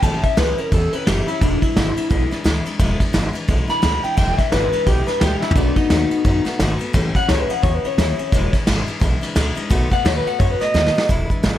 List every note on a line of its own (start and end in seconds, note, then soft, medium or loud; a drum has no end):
0.02 0.19 A1 loud
0.02 0.24 A2 medium
0.02 0.24 E3 medium
0.02 0.24 G3 medium
0.02 0.23 C#4 medium
0.02 0.22 E4 medium
0.02 0.23 A5 loud
0.02 kick loud
0.02 ride medium
0.23 0.37 G3 soft
0.23 0.37 C#4 soft
0.23 0.37 E4 medium
0.23 0.37 E5 loud
0.23 kick medium
0.23 ride medium
0.37 0.54 C#2 loud
0.37 0.58 A2 medium
0.37 0.58 E3 medium
0.37 0.58 G3 medium
0.37 0.58 C#4 medium
0.37 0.56 E4 medium
0.37 0.57 B4 loud
0.37 snare loud
0.37 ride medium
0.58 0.73 G3 soft
0.58 0.72 C#4 medium
0.58 0.72 E4 soft
0.58 0.72 A#4 medium
0.58 muted upright bass stroke medium
0.58 ride medium
0.72 0.89 E2 medium
0.72 0.93 E3 medium
0.72 0.94 G3 medium
0.72 0.93 C#4 medium
0.72 0.92 E4 medium
0.72 0.93 A4 medium
0.72 kick loud
0.72 ride medium
0.93 1.07 G3 soft
0.93 1.07 C#4 medium
0.93 1.07 E4 medium
0.93 1.06 B4 loud
0.93 muted upright bass stroke medium
0.93 ride medium
1.07 1.23 F#1 medium
1.07 1.27 A2 medium
1.07 1.28 E3 medium
1.07 1.28 G3 medium
1.07 1.28 C#4 medium
1.07 1.26 E4 medium
1.07 1.27 G4 medium
1.07 snare loud
1.07 ride medium
1.27 1.42 G3 medium
1.27 1.42 C#4 medium
1.27 1.40 E4 loud
1.27 1.41 E4 medium
1.27 ride medium
1.41 1.58 E1 loud
1.41 1.62 E2 medium
1.41 1.62 B2 medium
1.41 1.62 E3 medium
1.41 1.62 G#3 medium
1.41 1.61 D4 loud
1.41 1.62 D4 loud
1.41 1.61 E4 medium
1.41 kick loud
1.41 ride medium
1.62 1.76 E3 soft
1.62 1.76 G#3 soft
1.62 1.76 D4 soft
1.62 1.76 E4 medium
1.62 2.29 E4 loud
1.62 kick medium
1.62 ride medium
1.76 1.92 G#1 loud
1.76 1.97 E2 medium
1.76 1.97 B2 medium
1.76 1.97 E3 medium
1.76 1.97 G#3 medium
1.76 1.96 D4 medium
1.76 1.95 E4 medium
1.76 snare loud
1.76 ride medium
1.97 2.09 E3 soft
1.97 2.09 G#3 medium
1.97 2.10 D4 medium
1.97 2.10 E4 medium
1.97 muted upright bass stroke medium
1.97 ride medium
2.10 2.27 B1 loud
2.10 2.31 E3 medium
2.10 2.31 G#3 medium
2.10 2.31 D4 medium
2.10 2.30 E4 medium
2.10 kick loud
2.10 ride medium
2.31 2.44 E3 medium
2.31 2.44 G#3 medium
2.31 2.45 D4 medium
2.31 2.45 E4 medium
2.31 snare soft
2.31 ride medium
2.44 2.61 D2 medium
2.44 2.65 E2 loud
2.44 2.65 B2 medium
2.44 2.66 E3 medium
2.44 2.66 G#3 loud
2.44 2.66 D4 loud
2.44 2.64 E4 loud
2.44 snare loud
2.44 ride medium
2.66 2.79 E3 medium
2.66 2.79 G#3 medium
2.66 2.80 D4 medium
2.66 2.79 E4 medium
2.66 ride medium
2.79 2.96 E1 loud
2.79 3.00 E2 medium
2.79 3.00 B2 loud
2.79 3.00 E3 loud
2.79 3.01 G#3 loud
2.79 3.00 D4 medium
2.79 2.99 E4 loud
2.79 kick loud
2.79 snare soft
2.79 ride medium
3.00 3.13 E3 medium
3.00 3.13 G#3 medium
3.00 3.13 D4 medium
3.00 3.14 E4 medium
3.00 kick medium
3.00 snare soft
3.00 ride medium
3.13 3.31 G#1 loud
3.13 3.34 E2 loud
3.13 3.34 B2 medium
3.13 3.35 E3 medium
3.13 3.34 G#3 medium
3.13 3.33 D4 medium
3.13 3.32 E4 medium
3.13 snare loud
3.13 ride medium
3.33 3.46 E3 medium
3.33 3.47 G#3 medium
3.33 3.48 D4 medium
3.33 3.48 E4 medium
3.33 ride medium
3.48 3.65 B1 loud
3.48 3.69 E3 medium
3.48 3.69 G#3 medium
3.48 3.68 D4 medium
3.48 3.66 E4 medium
3.48 kick loud
3.48 ride medium
3.68 3.82 E3 medium
3.68 3.82 G#3 soft
3.68 3.82 D4 medium
3.68 3.82 E4 medium
3.68 4.03 B5 loud
3.68 muted upright bass stroke medium
3.68 snare soft
3.68 ride medium
3.82 4.00 D2 loud
3.82 4.03 E2 medium
3.82 4.03 B2 medium
3.82 4.04 E3 medium
3.82 4.04 G#3 medium
3.82 4.03 D4 medium
3.82 4.02 E4 medium
3.82 snare loud
3.82 ride medium
4.03 4.16 E3 medium
4.03 4.16 G#3 medium
4.03 4.17 D4 medium
4.03 4.17 E4 medium
4.03 4.16 G5 medium
4.03 muted upright bass stroke medium
4.03 ride medium
4.17 4.34 E1 loud
4.17 4.38 E2 medium
4.17 4.38 B2 medium
4.17 4.38 E3 medium
4.17 4.38 G#3 loud
4.17 4.38 D4 loud
4.17 4.37 E4 loud
4.17 4.37 G5 medium
4.17 kick loud
4.17 snare soft
4.17 ride medium
4.38 4.52 E3 soft
4.38 4.52 G#3 medium
4.38 4.53 D4 medium
4.38 4.52 E4 medium
4.38 4.51 E5 loud
4.38 kick medium
4.38 snare soft
4.38 ride medium
4.52 4.68 G#1 loud
4.52 4.73 E2 medium
4.52 4.73 B2 medium
4.52 4.73 E3 medium
4.52 4.73 G#3 medium
4.52 4.72 D4 medium
4.52 4.71 E4 medium
4.52 4.70 B4 loud
4.52 snare loud
4.52 ride medium
4.72 4.85 E3 soft
4.72 4.86 G#3 soft
4.72 4.87 D4 medium
4.72 4.86 E4 medium
4.72 4.86 B4 medium
4.72 muted upright bass stroke medium
4.72 ride medium
4.86 5.03 B1 medium
4.86 5.07 E3 medium
4.86 5.07 G#3 medium
4.86 5.06 D4 medium
4.86 5.05 E4 medium
4.86 5.07 G4 loud
4.86 kick loud
4.86 snare soft
4.86 ride medium
5.07 5.21 E3 soft
5.07 5.21 G#3 medium
5.07 5.21 D4 medium
5.07 5.21 E4 medium
5.07 5.20 B4 loud
5.07 snare soft
5.07 ride medium
5.20 5.38 D2 medium
5.20 5.42 E2 medium
5.20 5.42 B2 medium
5.20 5.42 E3 medium
5.20 5.42 G#3 medium
5.20 5.42 D4 medium
5.20 5.41 E4 medium
5.20 5.41 G4 loud
5.20 snare loud
5.20 ride medium
5.41 5.56 E3 medium
5.41 5.56 G#3 medium
5.41 5.56 D4 medium
5.41 5.55 E4 loud
5.41 5.56 E4 medium
5.41 snare medium
5.51 floor tom medium
5.55 5.73 B1 loud
5.55 5.76 B2 medium
5.55 5.77 D#3 medium
5.55 5.77 A3 medium
5.55 5.77 B3 medium
5.55 5.76 D4 loud
5.55 5.75 F#4 medium
5.55 kick loud
5.55 ride medium
5.76 5.90 A3 soft
5.76 5.91 B3 medium
5.76 6.43 D#4 loud
5.76 5.90 F#4 medium
5.76 kick medium
5.76 ride medium
5.90 6.07 D#2 loud
5.90 6.11 B2 medium
5.90 6.11 D#3 medium
5.90 6.11 A3 medium
5.90 6.10 B3 medium
5.90 6.09 F#4 medium
5.90 snare loud
5.90 ride medium
6.11 6.24 A3 soft
6.11 6.25 B3 soft
6.11 6.25 F#4 soft
6.11 muted upright bass stroke medium
6.11 ride medium
6.25 6.42 F#2 loud
6.25 6.45 D#3 medium
6.25 6.46 A3 medium
6.25 6.45 B3 medium
6.25 6.44 F#4 medium
6.25 kick loud
6.25 ride medium
6.45 6.60 A3 medium
6.45 6.60 B3 medium
6.45 6.59 F#4 medium
6.45 muted upright bass stroke medium
6.45 snare soft
6.45 ride medium
6.59 6.76 G#1 loud
6.59 6.80 B2 medium
6.59 6.80 D#3 medium
6.59 6.81 A3 medium
6.59 6.80 B3 loud
6.59 6.78 F#4 medium
6.59 snare loud
6.59 ride medium
6.79 6.94 A3 medium
6.79 6.94 B3 medium
6.79 6.93 F#4 medium
6.79 ride medium
6.93 7.11 A1 loud
6.93 7.14 A2 loud
6.93 7.15 E3 loud
6.93 7.15 G3 loud
6.93 7.15 C#4 loud
6.93 7.14 E4 loud
6.93 kick loud
6.93 snare soft
6.93 ride medium
7.15 7.28 G3 medium
7.15 7.29 C#4 medium
7.15 7.29 E4 medium
7.15 7.28 F#5 loud
7.15 muted upright bass stroke medium
7.15 kick medium
7.15 snare soft
7.15 ride medium
7.29 7.45 C#2 loud
7.29 7.49 A2 medium
7.29 7.49 E3 medium
7.29 7.50 G3 medium
7.29 7.49 C#4 medium
7.29 7.48 E4 medium
7.29 7.40 C#5 loud
7.29 snare loud
7.29 ride medium
7.40 7.51 B4 loud
7.49 7.63 G3 soft
7.49 7.63 C#4 soft
7.49 7.63 E4 medium
7.49 7.62 F#5 loud
7.49 muted upright bass stroke medium
7.49 ride medium
7.63 7.80 E2 medium
7.63 7.84 E3 medium
7.63 7.84 G3 medium
7.63 7.84 C#4 medium
7.63 7.83 E4 medium
7.63 7.75 C#5 loud
7.63 kick loud
7.63 snare soft
7.63 ride medium
7.75 7.86 B4 loud
7.84 7.98 G3 soft
7.84 7.98 C#4 soft
7.84 7.98 E4 medium
7.84 8.53 C#5 loud
7.84 muted upright bass stroke medium
7.84 ride medium
7.98 8.14 D#2 loud
7.98 8.19 A2 medium
7.98 8.19 E3 medium
7.98 8.19 G3 medium
7.98 8.19 C#4 medium
7.98 8.18 E4 loud
7.98 snare loud
7.98 ride medium
8.18 8.34 G3 soft
8.18 8.33 C#4 medium
8.18 8.32 E4 medium
8.18 muted upright bass stroke medium
8.18 ride medium
8.32 8.49 E1 loud
8.32 8.53 E2 medium
8.32 8.53 B2 loud
8.32 8.54 E3 loud
8.32 8.54 G#3 loud
8.32 8.54 D4 loud
8.32 8.52 E4 loud
8.32 kick loud
8.32 snare soft
8.32 ride medium
8.53 8.67 E3 medium
8.53 8.67 G#3 medium
8.53 8.67 D4 medium
8.53 8.67 E4 medium
8.53 kick medium
8.53 snare soft
8.53 ride medium
8.67 8.84 G#1 loud
8.67 8.88 E2 medium
8.67 8.88 B2 medium
8.67 8.88 E3 medium
8.67 8.87 G#3 medium
8.67 8.87 D4 loud
8.67 8.85 E4 medium
8.67 snare loud
8.67 ride loud
8.86 8.99 E3 medium
8.86 9.00 G#3 medium
8.86 9.01 D4 medium
8.86 9.01 E4 medium
8.86 muted upright bass stroke medium
8.86 ride medium
9.00 9.18 B1 medium
9.00 9.21 E3 medium
9.00 9.22 G#3 medium
9.00 9.21 D4 medium
9.00 9.20 E4 medium
9.00 kick loud
9.00 snare soft
9.00 ride medium
9.21 9.35 E3 medium
9.21 9.35 G#3 medium
9.21 9.36 D4 medium
9.21 9.35 E4 medium
9.21 muted upright bass stroke medium
9.21 snare soft
9.21 ride medium
9.35 9.52 D2 loud
9.35 9.56 E2 medium
9.35 9.57 B2 medium
9.35 9.57 E3 medium
9.35 9.56 G#3 loud
9.35 9.55 D4 loud
9.35 9.54 E4 medium
9.35 snare loud
9.35 ride loud
9.55 9.70 E3 medium
9.55 9.71 G#3 medium
9.55 9.70 D4 medium
9.55 9.70 E4 medium
9.55 ride medium
9.70 9.87 B1 loud
9.70 9.91 B2 loud
9.70 9.91 D#3 loud
9.70 9.91 A3 loud
9.70 9.90 B3 loud
9.70 9.89 F#4 loud
9.70 kick loud
9.70 ride medium
9.90 10.05 A3 soft
9.90 10.05 B3 medium
9.90 10.04 F#4 medium
9.90 10.04 F#5 loud
9.90 kick medium
9.90 snare soft
9.90 ride medium
10.04 10.21 D#2 loud
10.04 10.26 B2 medium
10.04 10.26 D#3 medium
10.04 10.26 A3 medium
10.04 10.25 B3 medium
10.04 10.24 F#4 medium
10.04 10.16 C#5 medium
10.04 snare loud
10.04 ride medium
10.17 10.28 B4 loud
10.25 10.38 A3 medium
10.25 10.39 B3 soft
10.25 10.39 F#4 medium
10.25 10.39 F#5 medium
10.25 muted upright bass stroke medium
10.25 ride medium
10.39 10.57 F#2 medium
10.39 10.60 D#3 medium
10.39 10.60 A3 medium
10.39 10.60 B3 medium
10.39 10.59 F#4 medium
10.39 10.50 C#5 loud
10.39 kick loud
10.39 snare soft
10.39 ride medium
10.50 10.62 B4 medium
10.60 10.74 A3 soft
10.60 10.74 B3 medium
10.60 10.74 F#4 medium
10.60 11.07 D#5 loud
10.60 muted upright bass stroke medium
10.60 snare soft
10.60 ride medium
10.74 10.91 D#2 loud
10.74 10.95 B2 medium
10.74 10.95 D#3 medium
10.74 10.95 A3 medium
10.74 10.96 B3 medium
10.74 10.94 F#4 medium
10.74 snare medium
10.86 snare medium
10.96 11.10 A3 soft
10.96 11.10 B3 medium
10.96 11.09 F#4 medium
10.96 snare loud
11.09 11.26 E1 medium
11.09 11.30 E2 medium
11.09 11.30 B2 medium
11.09 11.30 E3 medium
11.09 11.30 G#3 medium
11.09 11.29 D4 loud
11.09 11.28 E4 loud
11.09 kick loud
11.09 snare soft
11.09 closed hi-hat medium
11.29 11.42 E3 medium
11.29 11.43 G#3 medium
11.29 11.43 D4 soft
11.29 11.43 E4 medium
11.29 kick medium
11.29 closed hi-hat medium
11.43 11.58 G#1 loud
11.43 11.58 E2 medium
11.43 11.58 B2 medium
11.43 11.58 E3 medium
11.43 11.58 G#3 medium
11.43 11.58 D4 medium
11.43 11.58 E4 medium
11.43 snare loud
11.43 closed hi-hat medium